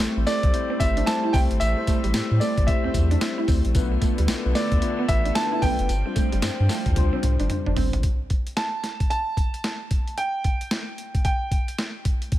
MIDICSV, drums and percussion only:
0, 0, Header, 1, 2, 480
1, 0, Start_track
1, 0, Key_signature, 0, "minor"
1, 0, Tempo, 535714
1, 1440, Time_signature, 4, 2, 24, 8
1, 11100, End_track
2, 0, Start_track
2, 0, Title_t, "Drums"
2, 0, Note_on_c, 9, 38, 127
2, 0, Note_on_c, 9, 42, 79
2, 0, Note_on_c, 9, 54, 95
2, 87, Note_off_c, 9, 54, 0
2, 89, Note_off_c, 9, 38, 0
2, 89, Note_off_c, 9, 42, 0
2, 241, Note_on_c, 9, 38, 69
2, 242, Note_on_c, 9, 46, 68
2, 242, Note_on_c, 9, 54, 73
2, 331, Note_off_c, 9, 38, 0
2, 331, Note_off_c, 9, 54, 0
2, 332, Note_off_c, 9, 46, 0
2, 388, Note_on_c, 9, 36, 88
2, 389, Note_on_c, 9, 42, 48
2, 478, Note_off_c, 9, 36, 0
2, 478, Note_off_c, 9, 42, 0
2, 482, Note_on_c, 9, 42, 75
2, 571, Note_off_c, 9, 42, 0
2, 718, Note_on_c, 9, 36, 88
2, 719, Note_on_c, 9, 54, 66
2, 722, Note_on_c, 9, 42, 80
2, 807, Note_off_c, 9, 36, 0
2, 808, Note_off_c, 9, 54, 0
2, 811, Note_off_c, 9, 42, 0
2, 869, Note_on_c, 9, 42, 58
2, 959, Note_off_c, 9, 42, 0
2, 960, Note_on_c, 9, 42, 55
2, 960, Note_on_c, 9, 54, 101
2, 961, Note_on_c, 9, 38, 102
2, 1049, Note_off_c, 9, 42, 0
2, 1049, Note_off_c, 9, 54, 0
2, 1050, Note_off_c, 9, 38, 0
2, 1200, Note_on_c, 9, 36, 107
2, 1200, Note_on_c, 9, 46, 79
2, 1203, Note_on_c, 9, 54, 67
2, 1289, Note_off_c, 9, 36, 0
2, 1290, Note_off_c, 9, 46, 0
2, 1292, Note_off_c, 9, 54, 0
2, 1350, Note_on_c, 9, 42, 50
2, 1440, Note_off_c, 9, 42, 0
2, 1440, Note_on_c, 9, 42, 74
2, 1441, Note_on_c, 9, 54, 72
2, 1530, Note_off_c, 9, 42, 0
2, 1531, Note_off_c, 9, 54, 0
2, 1679, Note_on_c, 9, 42, 70
2, 1679, Note_on_c, 9, 54, 69
2, 1681, Note_on_c, 9, 36, 84
2, 1769, Note_off_c, 9, 42, 0
2, 1769, Note_off_c, 9, 54, 0
2, 1771, Note_off_c, 9, 36, 0
2, 1827, Note_on_c, 9, 42, 59
2, 1916, Note_on_c, 9, 54, 95
2, 1917, Note_off_c, 9, 42, 0
2, 1917, Note_on_c, 9, 38, 127
2, 1917, Note_on_c, 9, 42, 75
2, 2005, Note_off_c, 9, 54, 0
2, 2007, Note_off_c, 9, 38, 0
2, 2007, Note_off_c, 9, 42, 0
2, 2160, Note_on_c, 9, 46, 64
2, 2160, Note_on_c, 9, 54, 76
2, 2249, Note_off_c, 9, 54, 0
2, 2250, Note_off_c, 9, 46, 0
2, 2307, Note_on_c, 9, 36, 97
2, 2308, Note_on_c, 9, 42, 49
2, 2396, Note_off_c, 9, 36, 0
2, 2397, Note_off_c, 9, 42, 0
2, 2399, Note_on_c, 9, 36, 94
2, 2399, Note_on_c, 9, 42, 72
2, 2488, Note_off_c, 9, 42, 0
2, 2489, Note_off_c, 9, 36, 0
2, 2636, Note_on_c, 9, 36, 84
2, 2637, Note_on_c, 9, 54, 64
2, 2640, Note_on_c, 9, 42, 80
2, 2726, Note_off_c, 9, 36, 0
2, 2727, Note_off_c, 9, 54, 0
2, 2729, Note_off_c, 9, 42, 0
2, 2788, Note_on_c, 9, 42, 56
2, 2878, Note_off_c, 9, 42, 0
2, 2878, Note_on_c, 9, 42, 62
2, 2878, Note_on_c, 9, 54, 100
2, 2879, Note_on_c, 9, 38, 108
2, 2967, Note_off_c, 9, 54, 0
2, 2968, Note_off_c, 9, 42, 0
2, 2969, Note_off_c, 9, 38, 0
2, 3117, Note_on_c, 9, 46, 73
2, 3119, Note_on_c, 9, 36, 99
2, 3120, Note_on_c, 9, 54, 64
2, 3207, Note_off_c, 9, 46, 0
2, 3208, Note_off_c, 9, 36, 0
2, 3209, Note_off_c, 9, 54, 0
2, 3268, Note_on_c, 9, 42, 50
2, 3357, Note_off_c, 9, 42, 0
2, 3357, Note_on_c, 9, 42, 73
2, 3358, Note_on_c, 9, 54, 73
2, 3359, Note_on_c, 9, 36, 126
2, 3447, Note_off_c, 9, 42, 0
2, 3448, Note_off_c, 9, 54, 0
2, 3449, Note_off_c, 9, 36, 0
2, 3598, Note_on_c, 9, 42, 62
2, 3598, Note_on_c, 9, 54, 64
2, 3601, Note_on_c, 9, 36, 82
2, 3688, Note_off_c, 9, 42, 0
2, 3688, Note_off_c, 9, 54, 0
2, 3690, Note_off_c, 9, 36, 0
2, 3747, Note_on_c, 9, 42, 61
2, 3835, Note_on_c, 9, 54, 100
2, 3836, Note_off_c, 9, 42, 0
2, 3836, Note_on_c, 9, 38, 119
2, 3836, Note_on_c, 9, 42, 76
2, 3924, Note_off_c, 9, 54, 0
2, 3926, Note_off_c, 9, 38, 0
2, 3926, Note_off_c, 9, 42, 0
2, 4078, Note_on_c, 9, 38, 69
2, 4079, Note_on_c, 9, 46, 65
2, 4079, Note_on_c, 9, 54, 72
2, 4168, Note_off_c, 9, 38, 0
2, 4169, Note_off_c, 9, 46, 0
2, 4169, Note_off_c, 9, 54, 0
2, 4226, Note_on_c, 9, 36, 93
2, 4227, Note_on_c, 9, 42, 50
2, 4316, Note_off_c, 9, 36, 0
2, 4316, Note_off_c, 9, 42, 0
2, 4318, Note_on_c, 9, 42, 75
2, 4408, Note_off_c, 9, 42, 0
2, 4556, Note_on_c, 9, 36, 92
2, 4557, Note_on_c, 9, 54, 61
2, 4559, Note_on_c, 9, 42, 81
2, 4646, Note_off_c, 9, 36, 0
2, 4646, Note_off_c, 9, 54, 0
2, 4649, Note_off_c, 9, 42, 0
2, 4708, Note_on_c, 9, 42, 53
2, 4797, Note_off_c, 9, 42, 0
2, 4797, Note_on_c, 9, 42, 60
2, 4797, Note_on_c, 9, 54, 100
2, 4798, Note_on_c, 9, 38, 114
2, 4886, Note_off_c, 9, 54, 0
2, 4887, Note_off_c, 9, 42, 0
2, 4888, Note_off_c, 9, 38, 0
2, 5038, Note_on_c, 9, 36, 97
2, 5038, Note_on_c, 9, 46, 78
2, 5040, Note_on_c, 9, 54, 65
2, 5127, Note_off_c, 9, 46, 0
2, 5128, Note_off_c, 9, 36, 0
2, 5130, Note_off_c, 9, 54, 0
2, 5187, Note_on_c, 9, 42, 53
2, 5277, Note_off_c, 9, 42, 0
2, 5279, Note_on_c, 9, 42, 72
2, 5279, Note_on_c, 9, 54, 66
2, 5368, Note_off_c, 9, 42, 0
2, 5369, Note_off_c, 9, 54, 0
2, 5518, Note_on_c, 9, 42, 65
2, 5518, Note_on_c, 9, 54, 69
2, 5521, Note_on_c, 9, 36, 88
2, 5608, Note_off_c, 9, 42, 0
2, 5608, Note_off_c, 9, 54, 0
2, 5611, Note_off_c, 9, 36, 0
2, 5667, Note_on_c, 9, 42, 60
2, 5754, Note_on_c, 9, 54, 103
2, 5755, Note_off_c, 9, 42, 0
2, 5755, Note_on_c, 9, 42, 77
2, 5756, Note_on_c, 9, 38, 123
2, 5844, Note_off_c, 9, 54, 0
2, 5845, Note_off_c, 9, 38, 0
2, 5845, Note_off_c, 9, 42, 0
2, 5997, Note_on_c, 9, 38, 65
2, 5997, Note_on_c, 9, 54, 72
2, 5998, Note_on_c, 9, 46, 74
2, 6086, Note_off_c, 9, 38, 0
2, 6087, Note_off_c, 9, 46, 0
2, 6087, Note_off_c, 9, 54, 0
2, 6145, Note_on_c, 9, 42, 48
2, 6146, Note_on_c, 9, 36, 93
2, 6235, Note_off_c, 9, 42, 0
2, 6236, Note_off_c, 9, 36, 0
2, 6237, Note_on_c, 9, 48, 65
2, 6238, Note_on_c, 9, 42, 79
2, 6239, Note_on_c, 9, 36, 94
2, 6327, Note_off_c, 9, 42, 0
2, 6327, Note_off_c, 9, 48, 0
2, 6329, Note_off_c, 9, 36, 0
2, 6477, Note_on_c, 9, 47, 73
2, 6478, Note_on_c, 9, 42, 81
2, 6567, Note_off_c, 9, 47, 0
2, 6568, Note_off_c, 9, 42, 0
2, 6626, Note_on_c, 9, 42, 50
2, 6716, Note_off_c, 9, 42, 0
2, 6717, Note_on_c, 9, 42, 61
2, 6717, Note_on_c, 9, 45, 94
2, 6806, Note_off_c, 9, 42, 0
2, 6807, Note_off_c, 9, 45, 0
2, 6867, Note_on_c, 9, 45, 83
2, 6957, Note_off_c, 9, 45, 0
2, 6957, Note_on_c, 9, 46, 75
2, 6958, Note_on_c, 9, 43, 102
2, 7047, Note_off_c, 9, 43, 0
2, 7047, Note_off_c, 9, 46, 0
2, 7108, Note_on_c, 9, 42, 51
2, 7108, Note_on_c, 9, 43, 90
2, 7197, Note_off_c, 9, 42, 0
2, 7197, Note_on_c, 9, 42, 71
2, 7198, Note_off_c, 9, 43, 0
2, 7199, Note_on_c, 9, 36, 106
2, 7287, Note_off_c, 9, 42, 0
2, 7289, Note_off_c, 9, 36, 0
2, 7437, Note_on_c, 9, 42, 56
2, 7440, Note_on_c, 9, 36, 80
2, 7527, Note_off_c, 9, 42, 0
2, 7530, Note_off_c, 9, 36, 0
2, 7586, Note_on_c, 9, 42, 56
2, 7675, Note_off_c, 9, 42, 0
2, 7676, Note_on_c, 9, 38, 104
2, 7676, Note_on_c, 9, 42, 69
2, 7766, Note_off_c, 9, 38, 0
2, 7766, Note_off_c, 9, 42, 0
2, 7917, Note_on_c, 9, 38, 55
2, 7918, Note_on_c, 9, 42, 66
2, 8006, Note_off_c, 9, 38, 0
2, 8008, Note_off_c, 9, 42, 0
2, 8067, Note_on_c, 9, 36, 87
2, 8067, Note_on_c, 9, 42, 47
2, 8156, Note_off_c, 9, 36, 0
2, 8157, Note_off_c, 9, 42, 0
2, 8159, Note_on_c, 9, 42, 65
2, 8249, Note_off_c, 9, 42, 0
2, 8397, Note_on_c, 9, 36, 83
2, 8400, Note_on_c, 9, 42, 71
2, 8486, Note_off_c, 9, 36, 0
2, 8490, Note_off_c, 9, 42, 0
2, 8548, Note_on_c, 9, 42, 46
2, 8637, Note_off_c, 9, 42, 0
2, 8638, Note_on_c, 9, 42, 56
2, 8639, Note_on_c, 9, 38, 97
2, 8727, Note_off_c, 9, 42, 0
2, 8728, Note_off_c, 9, 38, 0
2, 8877, Note_on_c, 9, 42, 64
2, 8878, Note_on_c, 9, 36, 88
2, 8966, Note_off_c, 9, 42, 0
2, 8968, Note_off_c, 9, 36, 0
2, 9027, Note_on_c, 9, 42, 43
2, 9117, Note_off_c, 9, 42, 0
2, 9117, Note_on_c, 9, 42, 71
2, 9207, Note_off_c, 9, 42, 0
2, 9358, Note_on_c, 9, 42, 59
2, 9360, Note_on_c, 9, 36, 73
2, 9447, Note_off_c, 9, 42, 0
2, 9450, Note_off_c, 9, 36, 0
2, 9507, Note_on_c, 9, 42, 57
2, 9597, Note_off_c, 9, 42, 0
2, 9597, Note_on_c, 9, 38, 119
2, 9597, Note_on_c, 9, 42, 68
2, 9686, Note_off_c, 9, 42, 0
2, 9687, Note_off_c, 9, 38, 0
2, 9839, Note_on_c, 9, 42, 60
2, 9929, Note_off_c, 9, 42, 0
2, 9986, Note_on_c, 9, 36, 86
2, 9987, Note_on_c, 9, 42, 45
2, 10076, Note_off_c, 9, 36, 0
2, 10077, Note_off_c, 9, 42, 0
2, 10077, Note_on_c, 9, 42, 71
2, 10079, Note_on_c, 9, 36, 86
2, 10167, Note_off_c, 9, 42, 0
2, 10168, Note_off_c, 9, 36, 0
2, 10316, Note_on_c, 9, 36, 86
2, 10319, Note_on_c, 9, 42, 69
2, 10406, Note_off_c, 9, 36, 0
2, 10408, Note_off_c, 9, 42, 0
2, 10467, Note_on_c, 9, 42, 51
2, 10557, Note_off_c, 9, 42, 0
2, 10558, Note_on_c, 9, 42, 53
2, 10559, Note_on_c, 9, 38, 95
2, 10648, Note_off_c, 9, 42, 0
2, 10649, Note_off_c, 9, 38, 0
2, 10798, Note_on_c, 9, 42, 64
2, 10799, Note_on_c, 9, 36, 90
2, 10887, Note_off_c, 9, 42, 0
2, 10888, Note_off_c, 9, 36, 0
2, 10947, Note_on_c, 9, 42, 50
2, 11037, Note_off_c, 9, 42, 0
2, 11037, Note_on_c, 9, 42, 69
2, 11039, Note_on_c, 9, 36, 107
2, 11100, Note_off_c, 9, 36, 0
2, 11100, Note_off_c, 9, 42, 0
2, 11100, End_track
0, 0, End_of_file